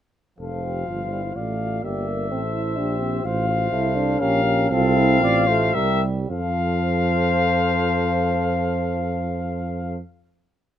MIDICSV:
0, 0, Header, 1, 6, 480
1, 0, Start_track
1, 0, Key_signature, -1, "major"
1, 0, Tempo, 478469
1, 394, Time_signature, 3, 2, 24, 8
1, 3745, Tempo, 497512
1, 5185, Tempo, 535714
1, 10170, End_track
2, 0, Start_track
2, 0, Title_t, "Trumpet"
2, 0, Program_c, 0, 56
2, 389, Note_on_c, 0, 77, 41
2, 1323, Note_off_c, 0, 77, 0
2, 1362, Note_on_c, 0, 77, 42
2, 1835, Note_off_c, 0, 77, 0
2, 1841, Note_on_c, 0, 76, 48
2, 3254, Note_on_c, 0, 77, 61
2, 3269, Note_off_c, 0, 76, 0
2, 4189, Note_off_c, 0, 77, 0
2, 4195, Note_on_c, 0, 77, 74
2, 4671, Note_off_c, 0, 77, 0
2, 4676, Note_on_c, 0, 77, 73
2, 5638, Note_on_c, 0, 76, 73
2, 5652, Note_off_c, 0, 77, 0
2, 5895, Note_off_c, 0, 76, 0
2, 6137, Note_on_c, 0, 77, 73
2, 9444, Note_off_c, 0, 77, 0
2, 10170, End_track
3, 0, Start_track
3, 0, Title_t, "Flugelhorn"
3, 0, Program_c, 1, 56
3, 392, Note_on_c, 1, 72, 41
3, 1370, Note_on_c, 1, 74, 41
3, 1385, Note_off_c, 1, 72, 0
3, 1852, Note_off_c, 1, 74, 0
3, 1856, Note_on_c, 1, 74, 45
3, 2328, Note_on_c, 1, 72, 49
3, 2343, Note_off_c, 1, 74, 0
3, 3254, Note_off_c, 1, 72, 0
3, 3260, Note_on_c, 1, 72, 59
3, 3492, Note_off_c, 1, 72, 0
3, 3498, Note_on_c, 1, 72, 66
3, 4206, Note_on_c, 1, 70, 73
3, 4220, Note_off_c, 1, 72, 0
3, 4685, Note_off_c, 1, 70, 0
3, 4691, Note_on_c, 1, 69, 78
3, 5185, Note_on_c, 1, 74, 86
3, 5199, Note_off_c, 1, 69, 0
3, 5406, Note_on_c, 1, 72, 76
3, 5419, Note_off_c, 1, 74, 0
3, 5656, Note_on_c, 1, 70, 69
3, 5670, Note_off_c, 1, 72, 0
3, 5904, Note_off_c, 1, 70, 0
3, 6151, Note_on_c, 1, 72, 80
3, 9459, Note_off_c, 1, 72, 0
3, 10170, End_track
4, 0, Start_track
4, 0, Title_t, "French horn"
4, 0, Program_c, 2, 60
4, 395, Note_on_c, 2, 69, 44
4, 643, Note_on_c, 2, 67, 43
4, 658, Note_off_c, 2, 69, 0
4, 880, Note_on_c, 2, 65, 40
4, 895, Note_off_c, 2, 67, 0
4, 1118, Note_on_c, 2, 64, 42
4, 1133, Note_off_c, 2, 65, 0
4, 1364, Note_on_c, 2, 65, 41
4, 1379, Note_off_c, 2, 64, 0
4, 1600, Note_off_c, 2, 65, 0
4, 1606, Note_on_c, 2, 65, 45
4, 1851, Note_on_c, 2, 67, 48
4, 1866, Note_off_c, 2, 65, 0
4, 2089, Note_on_c, 2, 70, 51
4, 2104, Note_off_c, 2, 67, 0
4, 2310, Note_off_c, 2, 70, 0
4, 2316, Note_on_c, 2, 69, 45
4, 2793, Note_on_c, 2, 67, 54
4, 2808, Note_off_c, 2, 69, 0
4, 3265, Note_on_c, 2, 65, 62
4, 3280, Note_off_c, 2, 67, 0
4, 3739, Note_on_c, 2, 69, 63
4, 3754, Note_off_c, 2, 65, 0
4, 4213, Note_on_c, 2, 67, 72
4, 4227, Note_off_c, 2, 69, 0
4, 4679, Note_off_c, 2, 67, 0
4, 4685, Note_on_c, 2, 65, 84
4, 4931, Note_on_c, 2, 64, 90
4, 4946, Note_off_c, 2, 65, 0
4, 5176, Note_on_c, 2, 65, 73
4, 5190, Note_off_c, 2, 64, 0
4, 5655, Note_on_c, 2, 67, 69
4, 5669, Note_off_c, 2, 65, 0
4, 5904, Note_off_c, 2, 67, 0
4, 6145, Note_on_c, 2, 69, 77
4, 9453, Note_off_c, 2, 69, 0
4, 10170, End_track
5, 0, Start_track
5, 0, Title_t, "Euphonium"
5, 0, Program_c, 3, 58
5, 384, Note_on_c, 3, 53, 52
5, 1077, Note_off_c, 3, 53, 0
5, 1115, Note_on_c, 3, 55, 54
5, 1226, Note_off_c, 3, 55, 0
5, 1358, Note_on_c, 3, 57, 55
5, 1834, Note_on_c, 3, 58, 58
5, 1849, Note_off_c, 3, 57, 0
5, 2298, Note_off_c, 3, 58, 0
5, 2304, Note_on_c, 3, 60, 67
5, 2415, Note_off_c, 3, 60, 0
5, 2539, Note_on_c, 3, 64, 73
5, 2776, Note_on_c, 3, 62, 75
5, 2791, Note_off_c, 3, 64, 0
5, 3006, Note_off_c, 3, 62, 0
5, 3012, Note_on_c, 3, 60, 71
5, 3240, Note_off_c, 3, 60, 0
5, 3246, Note_on_c, 3, 65, 88
5, 3723, Note_off_c, 3, 65, 0
5, 3727, Note_on_c, 3, 64, 89
5, 3961, Note_on_c, 3, 62, 98
5, 3976, Note_off_c, 3, 64, 0
5, 4194, Note_on_c, 3, 61, 107
5, 4208, Note_off_c, 3, 62, 0
5, 4431, Note_off_c, 3, 61, 0
5, 4437, Note_on_c, 3, 61, 93
5, 4695, Note_on_c, 3, 60, 106
5, 4710, Note_off_c, 3, 61, 0
5, 5408, Note_off_c, 3, 60, 0
5, 5413, Note_on_c, 3, 57, 100
5, 5650, Note_off_c, 3, 57, 0
5, 5654, Note_on_c, 3, 55, 88
5, 6139, Note_off_c, 3, 55, 0
5, 6153, Note_on_c, 3, 53, 85
5, 9460, Note_off_c, 3, 53, 0
5, 10170, End_track
6, 0, Start_track
6, 0, Title_t, "Tuba"
6, 0, Program_c, 4, 58
6, 391, Note_on_c, 4, 29, 45
6, 845, Note_off_c, 4, 29, 0
6, 879, Note_on_c, 4, 31, 45
6, 1348, Note_off_c, 4, 31, 0
6, 1354, Note_on_c, 4, 33, 43
6, 1834, Note_off_c, 4, 33, 0
6, 1841, Note_on_c, 4, 31, 51
6, 2318, Note_on_c, 4, 33, 52
6, 2333, Note_off_c, 4, 31, 0
6, 2795, Note_on_c, 4, 34, 57
6, 2810, Note_off_c, 4, 33, 0
6, 3247, Note_off_c, 4, 34, 0
6, 3253, Note_on_c, 4, 33, 74
6, 3726, Note_off_c, 4, 33, 0
6, 3731, Note_on_c, 4, 36, 67
6, 4195, Note_off_c, 4, 36, 0
6, 4201, Note_on_c, 4, 34, 69
6, 4675, Note_off_c, 4, 34, 0
6, 4681, Note_on_c, 4, 36, 92
6, 5173, Note_on_c, 4, 33, 78
6, 5187, Note_off_c, 4, 36, 0
6, 5652, Note_off_c, 4, 33, 0
6, 5656, Note_on_c, 4, 36, 73
6, 6141, Note_off_c, 4, 36, 0
6, 6147, Note_on_c, 4, 41, 79
6, 9454, Note_off_c, 4, 41, 0
6, 10170, End_track
0, 0, End_of_file